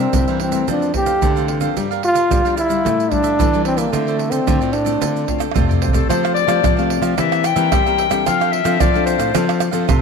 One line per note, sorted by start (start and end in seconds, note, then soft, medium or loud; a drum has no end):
0.00 0.11 C3 soft
0.00 0.41 C4 medium
0.00 0.12 A#4 medium
0.00 0.12 C5 medium
0.00 0.11 E5 medium
0.13 0.65 G2 medium
0.13 0.25 C3 medium
0.13 0.50 G3 medium
0.13 0.51 A#3 medium
0.13 0.26 E4 soft
0.13 0.51 E4 medium
0.13 0.27 A#4 soft
0.13 0.27 C5 soft
0.13 0.26 E5 soft
0.13 pandeiro medium
0.13 shaker medium
0.13 surdo medium
0.28 0.63 E3 medium
0.28 0.52 A#4 medium
0.28 0.52 C5 medium
0.28 0.51 E5 medium
0.28 pandeiro soft
0.28 shaker soft
0.40 0.67 C4 medium
0.40 pandeiro medium
0.52 0.90 E3 medium
0.52 0.90 A3 medium
0.52 0.90 C4 medium
0.52 0.67 A#4 medium
0.52 0.66 C5 medium
0.52 0.66 E5 medium
0.52 pandeiro medium
0.52 shaker medium
0.68 1.20 F2 soft
0.68 0.91 F3 medium
0.68 0.94 D4 medium
0.68 0.93 E4 soft
0.68 0.93 A4 soft
0.68 0.94 C5 soft
0.68 0.94 F5 soft
0.68 pandeiro medium
0.68 shaker medium
0.68 surdo medium
0.82 pandeiro soft
0.82 shaker soft
0.94 1.11 E3 medium
0.94 1.11 A3 soft
0.94 1.11 C4 medium
0.94 1.46 G4 medium
0.94 muted cavaquinho stroke soft
0.94 pandeiro medium
0.94 surdo medium
1.06 1.21 A4 medium
1.06 1.20 C5 medium
1.06 1.20 F5 medium
1.06 pandeiro medium
1.06 shaker medium
1.21 1.74 C3 medium
1.21 1.69 D3 medium
1.21 1.31 E3 soft
1.21 1.31 A3 soft
1.21 1.31 C4 medium
1.21 1.34 E4 medium
1.21 1.35 A4 medium
1.21 1.35 C5 medium
1.21 1.35 F5 medium
1.21 pandeiro medium
1.21 shaker medium
1.21 surdo medium
1.36 1.59 E3 medium
1.36 1.59 A3 medium
1.36 1.60 C4 medium
1.36 1.47 A4 medium
1.36 1.48 C5 medium
1.36 1.48 F5 medium
1.36 pandeiro soft
1.36 shaker soft
1.48 1.61 E4 soft
1.48 1.61 A4 soft
1.48 1.61 C5 soft
1.48 1.60 F5 soft
1.48 pandeiro medium
1.61 1.85 F3 medium
1.61 1.85 A#3 medium
1.61 1.85 D4 medium
1.61 1.75 A4 medium
1.61 1.75 C5 medium
1.61 1.74 F5 medium
1.61 pandeiro medium
1.61 shaker medium
1.77 2.28 G2 medium
1.77 2.23 G3 medium
1.77 1.89 G4 soft
1.77 1.90 A#4 soft
1.77 1.90 D5 medium
1.77 1.90 F5 soft
1.77 pandeiro medium
1.77 shaker medium
1.77 surdo medium
1.91 2.02 A#4 medium
1.91 2.02 D5 medium
1.91 2.02 F5 medium
1.91 pandeiro soft
1.91 shaker soft
2.03 2.54 F4 loud
2.03 muted cavaquinho stroke soft
2.03 pandeiro medium
2.14 2.29 A#4 medium
2.14 2.28 D5 medium
2.14 2.28 F5 medium
2.14 pandeiro medium
2.14 shaker medium
2.30 2.82 D3 medium
2.30 2.56 F3 medium
2.30 2.42 G3 medium
2.30 2.56 A#3 medium
2.30 2.57 D4 medium
2.30 2.43 G4 soft
2.30 2.43 A#4 soft
2.30 2.44 D5 medium
2.30 2.44 F5 soft
2.30 pandeiro medium
2.30 shaker medium
2.30 surdo medium
2.45 2.79 G3 medium
2.45 2.69 A#4 medium
2.45 2.68 D5 medium
2.45 2.67 F5 medium
2.45 pandeiro soft
2.45 shaker soft
2.57 3.13 E4 medium
2.57 pandeiro medium
2.57 shaker medium
2.68 3.07 G3 medium
2.68 3.07 D4 soft
2.68 3.07 E4 medium
2.68 2.83 A#4 medium
2.68 2.83 D5 medium
2.68 2.82 F5 medium
2.68 pandeiro soft
2.68 shaker medium
2.84 3.37 A2 medium
2.84 3.08 A3 medium
2.84 3.09 G4 soft
2.84 3.10 A4 soft
2.84 3.10 D5 soft
2.84 3.10 E5 soft
2.84 pandeiro medium
2.84 shaker medium
2.84 surdo medium
3.00 pandeiro soft
3.00 shaker soft
3.10 3.34 G3 medium
3.10 3.65 D4 loud
3.10 3.35 D4 soft
3.10 3.35 E4 medium
3.10 muted cavaquinho stroke soft
3.10 pandeiro medium
3.10 surdo medium
3.22 3.37 A4 medium
3.22 3.36 D5 medium
3.22 3.37 E5 medium
3.22 pandeiro soft
3.22 shaker medium
3.39 3.85 E3 medium
3.39 3.91 E3 medium
3.39 3.48 G3 medium
3.39 3.48 D4 soft
3.39 3.48 E4 medium
3.39 3.51 G4 medium
3.39 3.52 A4 medium
3.39 3.52 D5 medium
3.39 3.52 E5 medium
3.39 pandeiro medium
3.39 shaker medium
3.39 surdo medium
3.53 3.90 G3 medium
3.53 3.90 D4 medium
3.53 3.90 E4 medium
3.53 3.64 A4 soft
3.53 3.65 D5 medium
3.53 3.65 E5 medium
3.53 pandeiro soft
3.53 shaker soft
3.65 3.79 C4 medium
3.65 3.78 G4 soft
3.65 3.77 A4 soft
3.65 3.75 D5 soft
3.65 3.77 E5 soft
3.65 pandeiro medium
3.77 3.95 A#3 medium
3.77 3.91 A4 medium
3.77 3.91 D5 medium
3.77 3.91 E5 medium
3.77 pandeiro medium
3.77 shaker medium
3.92 4.39 D3 medium
3.92 4.45 D3 medium
3.92 4.32 A3 medium
3.92 4.43 A3 soft
3.92 4.44 C4 soft
3.92 4.05 F4 soft
3.92 4.44 F4 medium
3.92 4.05 A4 soft
3.92 4.05 C5 soft
3.92 4.06 D5 medium
3.92 pandeiro medium
3.92 shaker medium
3.92 surdo soft
4.07 4.17 A4 medium
4.07 4.18 C5 medium
4.07 4.18 D5 medium
4.07 pandeiro soft
4.07 shaker soft
4.18 muted cavaquinho stroke soft
4.18 pandeiro medium
4.31 4.74 C4 medium
4.31 4.46 A4 medium
4.31 4.45 C5 medium
4.31 4.45 D5 medium
4.31 pandeiro medium
4.31 shaker medium
4.47 4.99 A2 medium
4.47 4.59 D3 medium
4.47 4.73 A3 soft
4.47 4.73 C4 medium
4.47 4.60 F4 soft
4.47 4.73 F4 medium
4.47 4.60 A4 soft
4.47 4.60 C5 soft
4.47 4.59 D5 soft
4.47 pandeiro medium
4.47 shaker medium
4.47 surdo medium
4.61 4.96 A2 medium
4.61 4.85 A4 medium
4.61 4.85 C5 medium
4.61 4.83 D5 medium
4.61 pandeiro soft
4.61 shaker soft
4.73 5.55 D4 medium
4.73 pandeiro medium
4.85 5.23 A3 medium
4.85 5.23 C4 medium
4.85 5.23 F4 soft
4.85 5.00 A4 medium
4.85 4.99 C5 medium
4.85 4.99 D5 medium
4.85 pandeiro soft
4.85 shaker medium
5.00 5.24 D3 medium
5.00 5.53 D3 medium
5.00 5.25 F4 soft
5.00 5.25 A4 soft
5.00 5.26 C5 soft
5.00 5.26 D5 soft
5.00 pandeiro medium
5.00 shaker medium
5.00 surdo medium
5.16 pandeiro soft
5.16 shaker soft
5.26 5.44 A3 soft
5.26 5.45 C4 soft
5.26 5.45 F4 medium
5.26 muted cavaquinho stroke soft
5.26 pandeiro medium
5.26 surdo medium
5.38 5.53 A4 medium
5.38 5.53 C5 medium
5.38 5.53 D5 medium
5.38 pandeiro medium
5.38 tamborim medium
5.38 shaker medium
5.51 5.67 F4 medium
5.51 5.68 A4 medium
5.51 5.68 C5 medium
5.51 5.68 D5 medium
5.51 tamborim medium
5.56 6.07 A2 soft
5.56 6.02 C3 medium
5.56 5.92 A3 soft
5.56 5.93 C4 soft
5.56 5.92 F4 medium
5.56 pandeiro medium
5.56 shaker medium
5.56 surdo medium
5.60 surdo medium
5.69 5.80 A4 medium
5.69 5.80 C5 medium
5.69 5.81 D5 medium
5.69 surdo medium
5.69 pandeiro soft
5.69 shaker soft
5.80 5.94 F4 soft
5.80 5.93 A4 soft
5.80 5.96 C5 medium
5.80 5.92 C5 soft
5.80 5.92 D5 soft
5.80 pandeiro medium
5.88 surdo medium
5.93 6.45 A3 medium
5.93 6.45 C4 medium
5.93 6.45 G4 medium
5.93 6.09 A4 medium
5.93 6.08 A4 medium
5.93 6.07 C5 medium
5.93 6.07 D5 medium
5.93 pandeiro medium
5.93 shaker medium
5.93 surdo medium
6.06 6.44 F3 medium
6.06 6.22 A4 soft
6.06 6.33 C5 medium
6.06 surdo medium
6.10 6.61 F3 medium
6.10 6.22 G4 soft
6.10 6.23 F5 soft
6.10 6.22 A5 medium
6.10 pandeiro medium
6.10 tamborim medium
6.10 shaker medium
6.10 surdo medium
6.23 6.34 G4 medium
6.23 6.34 F5 medium
6.23 6.34 A5 medium
6.23 pandeiro soft
6.23 tamborim medium
6.23 shaker soft
6.34 6.86 D5 medium
6.34 muted cavaquinho stroke soft
6.34 pandeiro medium
6.47 6.60 F3 medium
6.47 6.72 A3 medium
6.47 6.72 C4 medium
6.47 6.62 G4 medium
6.47 6.72 G4 medium
6.47 6.62 F5 medium
6.47 6.61 A5 medium
6.47 pandeiro medium
6.47 tamborim medium
6.47 shaker medium
6.63 7.15 C3 medium
6.63 6.98 F3 medium
6.63 6.76 G4 soft
6.63 6.76 A4 soft
6.63 6.76 F5 medium
6.63 6.76 A5 medium
6.63 pandeiro medium
6.63 tamborim medium
6.63 shaker medium
6.63 surdo loud
6.77 7.14 A3 medium
6.77 7.14 C4 medium
6.77 7.02 G4 medium
6.77 7.14 G4 medium
6.77 7.01 F5 medium
6.77 7.00 A5 medium
6.77 pandeiro soft
6.77 shaker soft
6.90 pandeiro medium
7.02 7.14 F3 medium
7.02 7.16 G4 medium
7.02 7.16 F5 medium
7.02 7.15 A5 medium
7.02 pandeiro soft
7.02 tamborim medium
7.02 shaker medium
7.17 7.69 E3 medium
7.17 7.52 E3 medium
7.17 7.43 A#3 medium
7.17 7.43 C4 medium
7.17 7.43 E4 soft
7.17 7.44 G4 medium
7.17 7.43 A#4 soft
7.17 7.43 C5 soft
7.17 7.43 E5 medium
7.17 7.47 E5 medium
7.17 pandeiro medium
7.17 tamborim medium
7.17 shaker medium
7.17 surdo medium
7.32 pandeiro soft
7.32 tamborim medium
7.32 shaker soft
7.44 8.27 G5 loud
7.44 muted cavaquinho stroke soft
7.44 pandeiro medium
7.44 tamborim medium
7.44 shaker medium
7.56 7.69 E3 medium
7.56 7.80 A#3 medium
7.56 7.80 C4 medium
7.56 7.81 G4 medium
7.56 7.70 A#4 medium
7.56 7.70 C5 medium
7.56 7.69 E5 medium
7.56 pandeiro medium
7.56 shaker medium
7.71 8.24 E3 medium
7.71 8.07 G3 medium
7.71 7.84 E4 medium
7.71 7.84 A#4 medium
7.71 7.85 C5 medium
7.71 7.85 E5 medium
7.71 pandeiro medium
7.71 tamborim medium
7.71 shaker medium
7.71 surdo medium
7.86 8.09 A#3 medium
7.86 8.09 C4 medium
7.86 8.09 G4 medium
7.86 7.97 A#4 medium
7.86 7.97 C5 medium
7.86 7.98 E5 medium
7.86 pandeiro soft
7.86 shaker soft
7.97 8.11 E4 soft
7.97 8.10 A#4 soft
7.97 8.09 C5 soft
7.97 8.08 E5 soft
7.97 pandeiro medium
8.10 8.23 G3 medium
8.10 8.61 C4 medium
8.10 8.62 D4 medium
8.10 8.62 A4 medium
8.10 8.24 A#4 medium
8.10 8.24 C5 medium
8.10 8.24 E5 medium
8.10 pandeiro medium
8.10 tamborim medium
8.10 shaker medium
8.26 8.78 F3 medium
8.26 8.61 F3 medium
8.26 8.39 D4 soft
8.26 8.39 A4 soft
8.26 8.39 C5 soft
8.26 8.53 F5 medium
8.26 8.39 F5 medium
8.26 pandeiro medium
8.26 tamborim medium
8.26 shaker medium
8.26 surdo medium
8.40 8.52 A4 medium
8.40 8.52 C5 medium
8.40 8.52 F5 medium
8.40 pandeiro soft
8.40 tamborim medium
8.40 shaker soft
8.52 8.81 E5 medium
8.52 muted cavaquinho stroke soft
8.52 pandeiro medium
8.64 8.77 F3 medium
8.64 8.88 C4 medium
8.64 8.89 D4 medium
8.64 8.89 A4 medium
8.64 8.79 A4 medium
8.64 8.78 C5 medium
8.64 8.78 F5 medium
8.64 pandeiro medium
8.64 tamborim medium
8.64 shaker medium
8.80 9.15 F3 medium
8.80 9.32 F3 medium
8.80 8.93 D4 soft
8.80 8.93 A4 soft
8.80 8.93 C5 soft
8.80 9.05 D5 loud
8.80 8.93 F5 soft
8.80 pandeiro medium
8.80 tamborim medium
8.80 shaker medium
8.80 surdo loud
8.94 9.30 C4 medium
8.94 9.31 D4 medium
8.94 9.31 A4 medium
8.94 9.18 A4 medium
8.94 9.18 C5 medium
8.94 9.17 F5 medium
8.94 pandeiro soft
8.94 shaker soft
9.06 9.84 C5 medium
9.06 pandeiro medium
9.06 shaker medium
9.18 9.31 A2 medium
9.18 9.33 A4 soft
9.18 9.32 C5 medium
9.18 9.32 F5 medium
9.18 pandeiro soft
9.18 tamborim medium
9.18 shaker medium
9.34 9.86 F3 medium
9.34 9.69 F3 medium
9.34 9.71 C4 medium
9.34 9.58 F4 soft
9.34 9.71 F4 medium
9.34 9.59 A4 medium
9.34 9.71 A4 medium
9.34 9.59 C5 medium
9.34 9.60 F5 soft
9.34 pandeiro medium
9.34 tamborim medium
9.34 shaker medium
9.34 surdo medium
9.49 pandeiro soft
9.49 tamborim medium
9.49 shaker soft
9.60 muted cavaquinho stroke soft
9.60 pandeiro medium
9.60 tamborim medium
9.60 shaker medium
9.71 9.86 F3 medium
9.71 9.97 C4 medium
9.71 9.97 F4 medium
9.71 9.87 A4 medium
9.71 9.97 A4 medium
9.71 9.86 C5 medium
9.71 9.86 F5 medium
9.71 pandeiro medium
9.71 shaker medium
9.88 10.02 C3 medium
9.88 10.01 F4 medium
9.88 10.01 A4 medium
9.88 10.01 C5 medium
9.88 10.01 F5 medium
9.88 pandeiro medium
9.88 tamborim medium
9.88 shaker medium
9.88 surdo loud